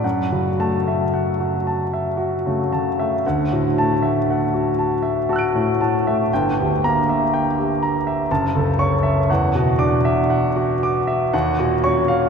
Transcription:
<<
  \new Staff \with { instrumentName = "Grand piano" } { \time 3/4 \key fis \phrygian \tempo 4 = 59 << { r8 a''8 r2 | r8 a''8 r4 <a'' e''' fis''' d''''>4 | r8 bes''8 r4. cis'''8 | r8 d'''8 r4. des'''8 | } \\ { fis''16 fis'8 e''16 fis''16 fis'16 a''16 e''16 fis'16 cis16 a''16 e''16 | fis''16 fis'8 e''16 fis''16 fis'16 a''16 e''16 fis'16 a,16 a''16 e''16 | g''16 g'8 e''16 g''16 g'16 bes''16 e''16 a''16 a'8 e''16 | fis''16 fis'8 e''16 fis''16 fis'16 d'''16 e''16 ges''16 ges'8 f''16 | } >> }
  \new Staff \with { instrumentName = "Grand piano" } { \clef bass \time 3/4 \key fis \phrygian fis,16 cis16 a8 r4 r16 a16 cis16 a16 | d,16 a,16 a8 r4 r16 a16 a,16 a16 | g,,16 d,16 bes8 r4 fis,,16 cis,16 cis'8 | e,16 b,16 d'8 r4 ees,16 bes,16 des'8 | }
>>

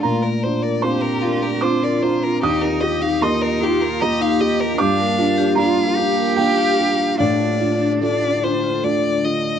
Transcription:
<<
  \new Staff \with { instrumentName = "Violin" } { \time 3/4 \key bes \major \tempo 4 = 75 f'16 bes'16 c''16 d''16 c''16 bes'16 f'16 bes'16 c''16 d''16 c''16 bes'16 | g'16 bes'16 ees''16 f''16 ees''16 bes'16 g'16 bes'16 ees''16 f''16 ees''16 bes'16 | f''4 f''4 f''4 | d''4 d''8 c''8 d''8 ees''8 | }
  \new Staff \with { instrumentName = "Vibraphone" } { \time 3/4 \key bes \major bes'16 d''16 d''16 bes'16 f''16 bes''16 bes'16 d''16 r16 bes'16 bes''16 bes''16 | ees'16 g'16 g'16 ees'16 bes'16 ees''16 ees'16 g'16 r16 ees'16 ees''16 ees''16 | g'16 bes'16 bes'16 g'16 d''16 f''16 g'16 bes'16 r16 g'16 f''16 f''16 | d'16 f'16 f'16 d'16 a'16 d''16 d'16 f'16 r16 d'16 d''16 d''16 | }
  \new Staff \with { instrumentName = "Ambient pad" } { \time 3/4 \key bes \major <c' d' f'>2. | <bes f' g'>2.~ | <bes f' g'>2. | <d f' a'>2. | }
  \new Staff \with { instrumentName = "Cello" } { \time 3/4 \key bes \major r4 g'4 f'4 | ees'8 g'8 ees'8 f'8 g'4 | d'4 f'8 g'4. | d'2~ d'8 r8 | }
  \new Staff \with { instrumentName = "Felt piano" } { \time 3/4 \key bes \major << { bes''4 c'''4 d'''4 | ees'''4 c'''4 bes''4 | d'''4 bes''4 g''4 | f''2~ f''8 r8 | } \\ { bes,8 <d' f'>8 <c' d' f'>8 <d' f'>8 <c' d' f'>8 <d' f'>8 | ees,8 <f' g'>8 <bes f' g'>8 <f' g'>8 <bes f' g'>8 <f' g'>8 | g,8 <d' f'>8 <bes d' f'>8 <d' f'>8 <bes d' f'>8 <d' f'>8 | a,8 <d' f'>8 <a d' f'>8 <d' f'>8 <a d' f'>8 <d f'>8 | } >> }
>>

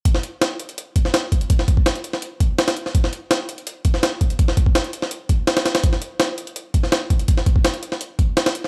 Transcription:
\new DrumStaff \with { instrumentName = "Drums" } \drummode { \time 4/4 \tempo 4 = 166 <hh bd>16 sn16 hh8 <hh sn>8 hh16 hh16 hh8 <hh bd>16 sn16 <hh sn>8 <hh bd>16 hh16 | <hh bd>16 sn16 <hh bd>16 bd16 <hh sn>16 hh16 hh16 sn16 hh8 <hh bd>8 <hh sn>16 <hh sn>16 hh16 sn16 | <hh bd>16 sn16 hh8 <hh sn>8 hh16 hh16 hh8 <hh bd>16 sn16 <hh sn>8 <hh bd>16 hh16 | <hh bd>16 sn16 <hh bd>16 bd16 <hh sn>16 hh16 hh16 sn16 hh8 <hh bd>8 <hh sn>16 <hh sn>16 <hh sn>16 <hh sn>16 |
<hh bd>16 sn16 hh8 <hh sn>8 hh16 hh16 hh8 <hh bd>16 sn16 <hh sn>8 <hh bd>16 hh16 | <hh bd>16 sn16 <hh bd>16 bd16 <hh sn>16 hh16 hh16 sn16 hh8 <hh bd>8 <hh sn>16 <hh sn>16 hh16 sn16 | }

